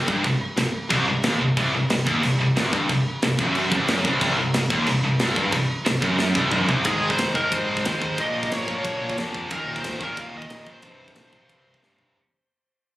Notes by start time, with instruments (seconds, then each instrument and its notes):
0.08 picked electric bass G1, distorted electric guitar G2, kick
0.24 picked electric bass C1, distorted electric guitar C2, kick, crash
0.57 picked electric bass C1, distorted electric guitar C2, snare, crash
0.90 picked electric bass C1, distorted electric guitar C2, kick, crash
1.08 picked electric bass C1, distorted electric guitar C2
1.23 picked electric bass D#1, distorted electric guitar D#2, snare, crash
1.41 picked electric bass C1, distorted electric guitar C2
1.57 picked electric bass C1, distorted electric guitar C2, kick, crash
1.74 picked electric bass C1, distorted electric guitar C2
1.90 picked electric bass C1, distorted electric guitar C2, snare, crash
2.07 picked electric bass D#1, distorted electric guitar D#2, kick
2.23 picked electric bass C1, distorted electric guitar C2, crash
2.40 picked electric bass C1, distorted electric guitar C2
2.56 picked electric bass C1, distorted electric guitar C2, snare, crash
2.73 picked electric bass G1, distorted electric guitar G2, kick
2.89 picked electric bass C1, distorted electric guitar C2, kick, crash
3.22 picked electric bass C1, distorted electric guitar C2, snare, crash
3.39 picked electric bass F#1, distorted electric guitar F#2, kick
3.55 crash
3.72 picked electric bass C1, distorted electric guitar C2, kick
3.88 picked electric bass F#1, distorted electric guitar F#2, snare, crash
4.05 picked electric bass C1, distorted electric guitar C2, kick
4.21 picked electric bass C1, distorted electric guitar C2, kick, crash
4.39 picked electric bass C1, distorted electric guitar C2
4.54 picked electric bass C1, distorted electric guitar C2, snare, crash
4.70 picked electric bass D#1, distorted electric guitar D#2, kick
4.87 picked electric bass C1, distorted electric guitar C2, crash
5.03 picked electric bass C1, distorted electric guitar C2
5.19 picked electric bass C1, distorted electric guitar C2, snare, crash
5.36 picked electric bass G1, distorted electric guitar G2, kick
5.52 picked electric bass C1, distorted electric guitar C2, kick, crash
5.86 picked electric bass C1, distorted electric guitar C2, snare, crash
6.02 picked electric bass F#1, distorted electric guitar F#2, kick
6.19 snare
6.35 picked electric bass C1, distorted electric guitar C2, kick
6.51 picked electric bass F#1, distorted electric guitar F#2, mid tom
6.68 picked electric bass C1, distorted electric guitar C2, floor tom
6.85 picked electric bass G#1, distorted electric guitar G#2 D#3 G#3, lead electric guitar G#4, kick, ride bell
7.02 picked electric bass G#1
7.10 lead electric guitar C5, kick
7.18 picked electric bass F1, snare, ride bell
7.35 distorted electric guitar G#2 D#3 G#3, lead electric guitar A#4, kick
7.52 picked electric bass G#1, lead electric guitar C5, kick, ride bell
7.69 picked electric bass G#2
7.77 kick
7.84 picked electric bass D#2, distorted electric guitar G#2 D#3 G#3, lead electric guitar C5, snare, ride bell
8.02 picked electric bass D#2, kick
8.18 picked electric bass A#1, distorted electric guitar A#2 F3 A#3, lead electric guitar D#5, kick, ride bell
8.36 picked electric bass A#1
8.43 kick
8.52 picked electric bass G#1, lead electric guitar C#5, snare, ride bell
8.67 distorted electric guitar A#2 F3 A#3, kick
8.85 picked electric bass A#1, kick, ride bell
9.01 picked electric bass A#2
9.10 kick
9.16 picked electric bass F2, distorted electric guitar A#2 F3 A#3, snare, ride bell
9.34 picked electric bass F2, kick
9.49 picked electric bass D#1, distorted electric guitar D#2 A#2 D#3, lead electric guitar A#4, kick, ride bell
9.68 picked electric bass D#1
9.76 lead electric guitar C5, kick
9.84 picked electric bass C#1, snare, ride bell
10.00 distorted electric guitar D#2 A#2 D#3, lead electric guitar A#4, kick
10.17 picked electric bass D#1, lead electric guitar F5, kick, ride bell
10.35 picked electric bass D#2, lead electric guitar D#5
10.42 kick
10.49 picked electric bass A#1, distorted electric guitar D#2 A#2 D#3, snare, ride bell
10.67 picked electric bass A#1, kick
10.71 lead electric guitar C5
10.82 picked electric bass C1, distorted electric guitar C2 G2 C3, kick, ride bell
11.00 picked electric bass C1
11.08 kick
11.16 picked electric bass A#1, snare, ride bell
11.33 distorted electric guitar C2 G2 C3, kick
11.49 picked electric bass C1, kick, ride bell
11.66 picked electric bass C2
11.74 kick
11.82 picked electric bass G1, distorted electric guitar C2 G2 C3, snare
11.99 picked electric bass G1, floor tom